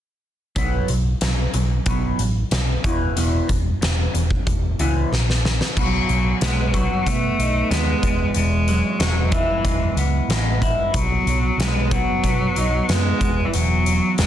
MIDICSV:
0, 0, Header, 1, 5, 480
1, 0, Start_track
1, 0, Key_signature, 4, "major"
1, 0, Tempo, 648649
1, 416, Time_signature, 4, 2, 24, 8
1, 10557, End_track
2, 0, Start_track
2, 0, Title_t, "Cello"
2, 0, Program_c, 0, 42
2, 4281, Note_on_c, 0, 54, 83
2, 4723, Note_off_c, 0, 54, 0
2, 4747, Note_on_c, 0, 56, 81
2, 4990, Note_on_c, 0, 54, 83
2, 5001, Note_off_c, 0, 56, 0
2, 5235, Note_on_c, 0, 57, 92
2, 5246, Note_off_c, 0, 54, 0
2, 5695, Note_on_c, 0, 56, 99
2, 5706, Note_off_c, 0, 57, 0
2, 6179, Note_off_c, 0, 56, 0
2, 6184, Note_on_c, 0, 56, 90
2, 6658, Note_on_c, 0, 54, 76
2, 6669, Note_off_c, 0, 56, 0
2, 6889, Note_on_c, 0, 52, 72
2, 6900, Note_off_c, 0, 54, 0
2, 7376, Note_off_c, 0, 52, 0
2, 8095, Note_on_c, 0, 54, 88
2, 8579, Note_on_c, 0, 56, 89
2, 8590, Note_off_c, 0, 54, 0
2, 8822, Note_on_c, 0, 54, 99
2, 8833, Note_off_c, 0, 56, 0
2, 9552, Note_on_c, 0, 56, 101
2, 9563, Note_off_c, 0, 54, 0
2, 9955, Note_on_c, 0, 52, 57
2, 9966, Note_off_c, 0, 56, 0
2, 10017, Note_on_c, 0, 54, 88
2, 10028, Note_off_c, 0, 52, 0
2, 10495, Note_off_c, 0, 54, 0
2, 10516, Note_on_c, 0, 56, 85
2, 10557, Note_off_c, 0, 56, 0
2, 10557, End_track
3, 0, Start_track
3, 0, Title_t, "Clean electric guitar"
3, 0, Program_c, 1, 27
3, 413, Note_on_c, 1, 47, 62
3, 417, Note_on_c, 1, 54, 79
3, 420, Note_on_c, 1, 59, 76
3, 641, Note_off_c, 1, 47, 0
3, 643, Note_off_c, 1, 54, 0
3, 644, Note_off_c, 1, 59, 0
3, 664, Note_on_c, 1, 47, 51
3, 667, Note_on_c, 1, 54, 59
3, 877, Note_off_c, 1, 47, 0
3, 878, Note_off_c, 1, 54, 0
3, 905, Note_on_c, 1, 47, 62
3, 907, Note_on_c, 1, 54, 69
3, 1118, Note_off_c, 1, 47, 0
3, 1119, Note_off_c, 1, 54, 0
3, 1140, Note_on_c, 1, 47, 49
3, 1142, Note_on_c, 1, 54, 62
3, 1356, Note_off_c, 1, 47, 0
3, 1357, Note_off_c, 1, 54, 0
3, 1387, Note_on_c, 1, 47, 71
3, 1392, Note_on_c, 1, 54, 69
3, 1399, Note_on_c, 1, 59, 76
3, 1609, Note_off_c, 1, 47, 0
3, 1612, Note_off_c, 1, 54, 0
3, 1615, Note_off_c, 1, 59, 0
3, 1633, Note_on_c, 1, 47, 66
3, 1634, Note_on_c, 1, 54, 70
3, 1843, Note_off_c, 1, 47, 0
3, 1843, Note_off_c, 1, 54, 0
3, 1865, Note_on_c, 1, 47, 64
3, 1871, Note_on_c, 1, 54, 75
3, 2079, Note_off_c, 1, 47, 0
3, 2082, Note_off_c, 1, 54, 0
3, 2109, Note_on_c, 1, 40, 62
3, 2116, Note_on_c, 1, 47, 67
3, 2116, Note_on_c, 1, 52, 79
3, 2331, Note_off_c, 1, 40, 0
3, 2334, Note_off_c, 1, 52, 0
3, 2335, Note_off_c, 1, 47, 0
3, 2340, Note_on_c, 1, 40, 69
3, 2343, Note_on_c, 1, 47, 80
3, 2352, Note_on_c, 1, 52, 82
3, 2567, Note_off_c, 1, 40, 0
3, 2568, Note_off_c, 1, 47, 0
3, 2573, Note_off_c, 1, 52, 0
3, 2578, Note_on_c, 1, 40, 59
3, 2579, Note_on_c, 1, 47, 65
3, 2796, Note_off_c, 1, 40, 0
3, 2797, Note_off_c, 1, 47, 0
3, 2822, Note_on_c, 1, 40, 64
3, 2826, Note_on_c, 1, 47, 66
3, 3038, Note_off_c, 1, 40, 0
3, 3041, Note_off_c, 1, 47, 0
3, 3063, Note_on_c, 1, 40, 63
3, 3065, Note_on_c, 1, 47, 67
3, 3279, Note_off_c, 1, 40, 0
3, 3280, Note_off_c, 1, 47, 0
3, 3304, Note_on_c, 1, 40, 56
3, 3306, Note_on_c, 1, 47, 65
3, 3520, Note_off_c, 1, 40, 0
3, 3521, Note_off_c, 1, 47, 0
3, 3549, Note_on_c, 1, 40, 84
3, 3554, Note_on_c, 1, 47, 92
3, 3558, Note_on_c, 1, 52, 78
3, 3772, Note_off_c, 1, 40, 0
3, 3774, Note_off_c, 1, 47, 0
3, 3777, Note_off_c, 1, 52, 0
3, 3789, Note_on_c, 1, 40, 66
3, 4002, Note_off_c, 1, 40, 0
3, 4032, Note_on_c, 1, 40, 47
3, 4036, Note_on_c, 1, 47, 52
3, 4244, Note_off_c, 1, 40, 0
3, 4246, Note_off_c, 1, 47, 0
3, 4272, Note_on_c, 1, 47, 58
3, 4515, Note_on_c, 1, 54, 58
3, 4751, Note_on_c, 1, 59, 63
3, 4988, Note_on_c, 1, 66, 64
3, 5231, Note_off_c, 1, 59, 0
3, 5234, Note_on_c, 1, 59, 64
3, 5469, Note_off_c, 1, 47, 0
3, 5474, Note_on_c, 1, 63, 65
3, 5702, Note_off_c, 1, 59, 0
3, 5705, Note_on_c, 1, 59, 68
3, 5945, Note_on_c, 1, 40, 52
3, 5949, Note_off_c, 1, 63, 0
3, 5967, Note_off_c, 1, 54, 0
3, 5967, Note_off_c, 1, 66, 0
3, 6176, Note_off_c, 1, 40, 0
3, 6185, Note_on_c, 1, 40, 66
3, 6426, Note_on_c, 1, 54, 59
3, 6660, Note_off_c, 1, 59, 0
3, 6663, Note_on_c, 1, 56, 65
3, 6900, Note_on_c, 1, 64, 64
3, 7132, Note_off_c, 1, 56, 0
3, 7140, Note_on_c, 1, 56, 60
3, 7383, Note_off_c, 1, 40, 0
3, 7385, Note_on_c, 1, 59, 63
3, 7616, Note_off_c, 1, 56, 0
3, 7625, Note_on_c, 1, 56, 66
3, 7647, Note_off_c, 1, 54, 0
3, 7854, Note_off_c, 1, 64, 0
3, 7863, Note_on_c, 1, 64, 56
3, 8102, Note_off_c, 1, 64, 0
3, 8103, Note_off_c, 1, 56, 0
3, 8107, Note_on_c, 1, 47, 61
3, 8349, Note_on_c, 1, 54, 55
3, 8591, Note_off_c, 1, 59, 0
3, 8591, Note_on_c, 1, 59, 64
3, 8830, Note_on_c, 1, 66, 63
3, 9066, Note_off_c, 1, 59, 0
3, 9069, Note_on_c, 1, 59, 62
3, 9301, Note_off_c, 1, 47, 0
3, 9311, Note_on_c, 1, 63, 61
3, 9547, Note_off_c, 1, 59, 0
3, 9550, Note_on_c, 1, 59, 65
3, 9783, Note_off_c, 1, 63, 0
3, 9787, Note_on_c, 1, 40, 52
3, 9809, Note_off_c, 1, 54, 0
3, 9809, Note_off_c, 1, 66, 0
3, 10016, Note_off_c, 1, 40, 0
3, 10025, Note_on_c, 1, 40, 65
3, 10270, Note_on_c, 1, 54, 60
3, 10497, Note_off_c, 1, 59, 0
3, 10500, Note_on_c, 1, 56, 64
3, 10557, Note_off_c, 1, 40, 0
3, 10557, Note_off_c, 1, 54, 0
3, 10557, Note_off_c, 1, 56, 0
3, 10557, End_track
4, 0, Start_track
4, 0, Title_t, "Picked electric bass"
4, 0, Program_c, 2, 34
4, 413, Note_on_c, 2, 35, 63
4, 592, Note_off_c, 2, 35, 0
4, 656, Note_on_c, 2, 35, 64
4, 834, Note_off_c, 2, 35, 0
4, 898, Note_on_c, 2, 35, 65
4, 1075, Note_off_c, 2, 35, 0
4, 1137, Note_on_c, 2, 35, 68
4, 1315, Note_off_c, 2, 35, 0
4, 1381, Note_on_c, 2, 35, 80
4, 1558, Note_off_c, 2, 35, 0
4, 1613, Note_on_c, 2, 33, 66
4, 1793, Note_off_c, 2, 33, 0
4, 1858, Note_on_c, 2, 35, 78
4, 2036, Note_off_c, 2, 35, 0
4, 2103, Note_on_c, 2, 28, 72
4, 2280, Note_off_c, 2, 28, 0
4, 2335, Note_on_c, 2, 28, 66
4, 2515, Note_off_c, 2, 28, 0
4, 2582, Note_on_c, 2, 28, 68
4, 2759, Note_off_c, 2, 28, 0
4, 2826, Note_on_c, 2, 28, 73
4, 3002, Note_off_c, 2, 28, 0
4, 3062, Note_on_c, 2, 28, 70
4, 3239, Note_off_c, 2, 28, 0
4, 3309, Note_on_c, 2, 28, 68
4, 3484, Note_off_c, 2, 28, 0
4, 3546, Note_on_c, 2, 37, 69
4, 3722, Note_off_c, 2, 37, 0
4, 3786, Note_on_c, 2, 34, 77
4, 4140, Note_off_c, 2, 34, 0
4, 4266, Note_on_c, 2, 35, 74
4, 4434, Note_off_c, 2, 35, 0
4, 4502, Note_on_c, 2, 35, 67
4, 4672, Note_off_c, 2, 35, 0
4, 4745, Note_on_c, 2, 35, 74
4, 5083, Note_off_c, 2, 35, 0
4, 5228, Note_on_c, 2, 47, 78
4, 5395, Note_off_c, 2, 47, 0
4, 5462, Note_on_c, 2, 35, 66
4, 5632, Note_off_c, 2, 35, 0
4, 5702, Note_on_c, 2, 39, 78
4, 5871, Note_off_c, 2, 39, 0
4, 5941, Note_on_c, 2, 28, 70
4, 6111, Note_off_c, 2, 28, 0
4, 6180, Note_on_c, 2, 28, 75
4, 6519, Note_off_c, 2, 28, 0
4, 6657, Note_on_c, 2, 28, 74
4, 6996, Note_off_c, 2, 28, 0
4, 7137, Note_on_c, 2, 28, 72
4, 7308, Note_off_c, 2, 28, 0
4, 7371, Note_on_c, 2, 37, 71
4, 7543, Note_off_c, 2, 37, 0
4, 7610, Note_on_c, 2, 33, 84
4, 7951, Note_off_c, 2, 33, 0
4, 8094, Note_on_c, 2, 35, 73
4, 8265, Note_off_c, 2, 35, 0
4, 8329, Note_on_c, 2, 35, 73
4, 8502, Note_off_c, 2, 35, 0
4, 8565, Note_on_c, 2, 35, 73
4, 8907, Note_off_c, 2, 35, 0
4, 9054, Note_on_c, 2, 47, 83
4, 9224, Note_off_c, 2, 47, 0
4, 9296, Note_on_c, 2, 35, 64
4, 9465, Note_off_c, 2, 35, 0
4, 9538, Note_on_c, 2, 42, 80
4, 9706, Note_off_c, 2, 42, 0
4, 9773, Note_on_c, 2, 28, 76
4, 9943, Note_off_c, 2, 28, 0
4, 10018, Note_on_c, 2, 28, 75
4, 10354, Note_off_c, 2, 28, 0
4, 10495, Note_on_c, 2, 28, 69
4, 10557, Note_off_c, 2, 28, 0
4, 10557, End_track
5, 0, Start_track
5, 0, Title_t, "Drums"
5, 414, Note_on_c, 9, 42, 72
5, 415, Note_on_c, 9, 36, 90
5, 488, Note_off_c, 9, 42, 0
5, 489, Note_off_c, 9, 36, 0
5, 653, Note_on_c, 9, 42, 51
5, 727, Note_off_c, 9, 42, 0
5, 896, Note_on_c, 9, 42, 71
5, 901, Note_on_c, 9, 38, 87
5, 970, Note_off_c, 9, 42, 0
5, 975, Note_off_c, 9, 38, 0
5, 1137, Note_on_c, 9, 42, 54
5, 1211, Note_off_c, 9, 42, 0
5, 1375, Note_on_c, 9, 42, 65
5, 1379, Note_on_c, 9, 36, 88
5, 1449, Note_off_c, 9, 42, 0
5, 1453, Note_off_c, 9, 36, 0
5, 1621, Note_on_c, 9, 42, 52
5, 1695, Note_off_c, 9, 42, 0
5, 1860, Note_on_c, 9, 42, 72
5, 1865, Note_on_c, 9, 38, 79
5, 1934, Note_off_c, 9, 42, 0
5, 1939, Note_off_c, 9, 38, 0
5, 2103, Note_on_c, 9, 36, 90
5, 2109, Note_on_c, 9, 42, 51
5, 2177, Note_off_c, 9, 36, 0
5, 2183, Note_off_c, 9, 42, 0
5, 2344, Note_on_c, 9, 42, 71
5, 2418, Note_off_c, 9, 42, 0
5, 2584, Note_on_c, 9, 42, 49
5, 2585, Note_on_c, 9, 36, 59
5, 2658, Note_off_c, 9, 42, 0
5, 2659, Note_off_c, 9, 36, 0
5, 2829, Note_on_c, 9, 42, 65
5, 2834, Note_on_c, 9, 38, 89
5, 2903, Note_off_c, 9, 42, 0
5, 2908, Note_off_c, 9, 38, 0
5, 3068, Note_on_c, 9, 42, 54
5, 3142, Note_off_c, 9, 42, 0
5, 3186, Note_on_c, 9, 36, 62
5, 3260, Note_off_c, 9, 36, 0
5, 3306, Note_on_c, 9, 42, 58
5, 3307, Note_on_c, 9, 36, 84
5, 3380, Note_off_c, 9, 42, 0
5, 3381, Note_off_c, 9, 36, 0
5, 3547, Note_on_c, 9, 42, 49
5, 3621, Note_off_c, 9, 42, 0
5, 3793, Note_on_c, 9, 38, 45
5, 3867, Note_off_c, 9, 38, 0
5, 3920, Note_on_c, 9, 38, 46
5, 3994, Note_off_c, 9, 38, 0
5, 4035, Note_on_c, 9, 38, 63
5, 4109, Note_off_c, 9, 38, 0
5, 4151, Note_on_c, 9, 38, 64
5, 4225, Note_off_c, 9, 38, 0
5, 4268, Note_on_c, 9, 36, 90
5, 4270, Note_on_c, 9, 49, 78
5, 4342, Note_off_c, 9, 36, 0
5, 4344, Note_off_c, 9, 49, 0
5, 4507, Note_on_c, 9, 42, 46
5, 4581, Note_off_c, 9, 42, 0
5, 4746, Note_on_c, 9, 42, 70
5, 4751, Note_on_c, 9, 38, 91
5, 4820, Note_off_c, 9, 42, 0
5, 4825, Note_off_c, 9, 38, 0
5, 4986, Note_on_c, 9, 42, 56
5, 4987, Note_on_c, 9, 36, 68
5, 5060, Note_off_c, 9, 42, 0
5, 5061, Note_off_c, 9, 36, 0
5, 5228, Note_on_c, 9, 36, 65
5, 5231, Note_on_c, 9, 42, 66
5, 5302, Note_off_c, 9, 36, 0
5, 5305, Note_off_c, 9, 42, 0
5, 5474, Note_on_c, 9, 42, 53
5, 5548, Note_off_c, 9, 42, 0
5, 5708, Note_on_c, 9, 42, 71
5, 5713, Note_on_c, 9, 38, 87
5, 5782, Note_off_c, 9, 42, 0
5, 5787, Note_off_c, 9, 38, 0
5, 5943, Note_on_c, 9, 36, 80
5, 5944, Note_on_c, 9, 42, 56
5, 6017, Note_off_c, 9, 36, 0
5, 6018, Note_off_c, 9, 42, 0
5, 6175, Note_on_c, 9, 42, 75
5, 6249, Note_off_c, 9, 42, 0
5, 6421, Note_on_c, 9, 42, 44
5, 6495, Note_off_c, 9, 42, 0
5, 6660, Note_on_c, 9, 42, 68
5, 6665, Note_on_c, 9, 38, 93
5, 6734, Note_off_c, 9, 42, 0
5, 6739, Note_off_c, 9, 38, 0
5, 6895, Note_on_c, 9, 42, 51
5, 6898, Note_on_c, 9, 36, 79
5, 6969, Note_off_c, 9, 42, 0
5, 6972, Note_off_c, 9, 36, 0
5, 7138, Note_on_c, 9, 36, 69
5, 7138, Note_on_c, 9, 42, 66
5, 7212, Note_off_c, 9, 36, 0
5, 7212, Note_off_c, 9, 42, 0
5, 7379, Note_on_c, 9, 42, 46
5, 7453, Note_off_c, 9, 42, 0
5, 7621, Note_on_c, 9, 42, 65
5, 7626, Note_on_c, 9, 38, 89
5, 7695, Note_off_c, 9, 42, 0
5, 7700, Note_off_c, 9, 38, 0
5, 7857, Note_on_c, 9, 36, 66
5, 7862, Note_on_c, 9, 42, 47
5, 7931, Note_off_c, 9, 36, 0
5, 7936, Note_off_c, 9, 42, 0
5, 8095, Note_on_c, 9, 42, 75
5, 8096, Note_on_c, 9, 36, 102
5, 8169, Note_off_c, 9, 42, 0
5, 8170, Note_off_c, 9, 36, 0
5, 8341, Note_on_c, 9, 42, 48
5, 8415, Note_off_c, 9, 42, 0
5, 8582, Note_on_c, 9, 42, 75
5, 8587, Note_on_c, 9, 38, 100
5, 8656, Note_off_c, 9, 42, 0
5, 8661, Note_off_c, 9, 38, 0
5, 8816, Note_on_c, 9, 36, 79
5, 8816, Note_on_c, 9, 42, 55
5, 8890, Note_off_c, 9, 36, 0
5, 8890, Note_off_c, 9, 42, 0
5, 9055, Note_on_c, 9, 36, 65
5, 9055, Note_on_c, 9, 42, 63
5, 9129, Note_off_c, 9, 36, 0
5, 9129, Note_off_c, 9, 42, 0
5, 9296, Note_on_c, 9, 42, 59
5, 9370, Note_off_c, 9, 42, 0
5, 9538, Note_on_c, 9, 42, 74
5, 9543, Note_on_c, 9, 38, 95
5, 9612, Note_off_c, 9, 42, 0
5, 9617, Note_off_c, 9, 38, 0
5, 9775, Note_on_c, 9, 36, 85
5, 9776, Note_on_c, 9, 42, 54
5, 9849, Note_off_c, 9, 36, 0
5, 9850, Note_off_c, 9, 42, 0
5, 10016, Note_on_c, 9, 42, 76
5, 10090, Note_off_c, 9, 42, 0
5, 10258, Note_on_c, 9, 42, 50
5, 10332, Note_off_c, 9, 42, 0
5, 10493, Note_on_c, 9, 42, 69
5, 10498, Note_on_c, 9, 38, 86
5, 10557, Note_off_c, 9, 38, 0
5, 10557, Note_off_c, 9, 42, 0
5, 10557, End_track
0, 0, End_of_file